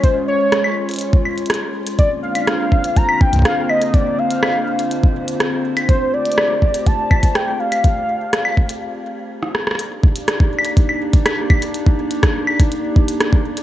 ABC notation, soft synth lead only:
X:1
M:4/4
L:1/8
Q:1/4=123
K:Eblyd
V:1 name="Soft synth lead"
c _d4 z3 | d f3 b g f e | d f4 z3 | c d3 a2 g f- |
f6 z2 | z8 | z8 |]